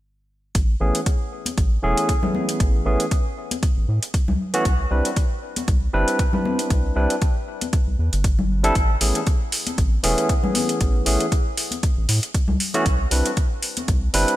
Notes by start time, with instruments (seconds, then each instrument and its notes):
0.55 analog synth bass A1, kick, closed hi-hat
0.80 analog synth bass A1, tine electric piano E3 A3 B3 C#4 G#4
0.95 closed hi-hat
1.06 kick, closed hi-hat
1.46 closed hi-hat, high conga
1.58 analog synth bass A1, kick, closed hi-hat
1.83 analog synth bass E1, tine electric piano E3 A3 B3 C#4 G#4
1.97 closed hi-hat
2.09 kick, closed hi-hat
2.22 tine electric piano E3 A3 B3 C#4 G#4, low conga
2.35 high conga
2.49 closed hi-hat
2.60 analog synth bass A1, kick, closed hi-hat
2.85 analog synth bass A1, tine electric piano E3 A3 B3 C#4 G#4
3.00 closed hi-hat
3.11 kick, closed hi-hat
3.51 closed hi-hat, high conga
3.63 kick, closed hi-hat
3.77 analog synth bass A1
3.88 analog synth bass A2
4.03 closed hi-hat
4.14 kick, closed hi-hat
4.28 analog synth bass C#2, low conga
4.53 tine electric piano E3 A3 B3 C#4 F#4, closed hi-hat
4.65 analog synth bass C2, kick, closed hi-hat
4.91 analog synth bass C2, tine electric piano G3 C4 D4 E4 B4
5.05 closed hi-hat
5.16 kick, closed hi-hat
5.56 closed hi-hat, high conga
5.68 analog synth bass C2, kick, closed hi-hat
5.93 analog synth bass G1, tine electric piano G3 C4 D4 E4 B4
6.08 closed hi-hat
6.19 kick, closed hi-hat
6.32 tine electric piano G3 C4 D4 E4 B4, low conga
6.45 high conga
6.59 closed hi-hat
6.70 analog synth bass C2, kick, closed hi-hat
6.96 analog synth bass C2, tine electric piano G3 C4 D4 E4 B4
7.10 closed hi-hat
7.22 kick, closed hi-hat
7.61 closed hi-hat, high conga
7.73 kick, closed hi-hat
7.87 analog synth bass C2
7.99 analog synth bass E2
8.13 analog synth bass G1, closed hi-hat
8.24 kick, closed hi-hat
8.39 low conga
8.63 tine electric piano G3 C4 D4 E4 A4, closed hi-hat
8.75 analog synth bass A1, kick, closed hi-hat
9.01 analog synth bass A1, tine electric piano E3 A3 B3 C#4 G#4, open hi-hat
9.15 closed hi-hat
9.27 kick, closed hi-hat
9.52 open hi-hat
9.67 closed hi-hat, high conga
9.78 analog synth bass A1, kick, closed hi-hat
10.03 analog synth bass E1, tine electric piano E3 A3 B3 C#4 G#4, open hi-hat
10.18 closed hi-hat
10.29 kick, closed hi-hat
10.43 tine electric piano E3 A3 B3 C#4 G#4, low conga
10.55 open hi-hat, high conga
10.69 closed hi-hat
10.81 analog synth bass A1, kick, closed hi-hat
11.06 analog synth bass A1, tine electric piano E3 A3 B3 C#4 G#4, open hi-hat
11.20 closed hi-hat
11.32 kick, closed hi-hat
11.57 open hi-hat
11.71 closed hi-hat, high conga
11.83 kick, closed hi-hat
11.97 analog synth bass A1
12.09 analog synth bass A2, open hi-hat
12.23 closed hi-hat
12.34 kick, closed hi-hat
12.48 analog synth bass C#2, low conga
12.60 open hi-hat
12.74 tine electric piano E3 A3 B3 C#4 F#4, closed hi-hat
12.86 analog synth bass C2, kick, closed hi-hat
13.11 analog synth bass C2, tine electric piano G3 C4 D4 E4 B4, open hi-hat
13.26 closed hi-hat
13.37 kick, closed hi-hat
13.63 open hi-hat
13.77 closed hi-hat, high conga
13.88 analog synth bass C2, kick, closed hi-hat
14.13 analog synth bass G1, tine electric piano G3 C4 D4 E4 B4, open hi-hat
14.28 closed hi-hat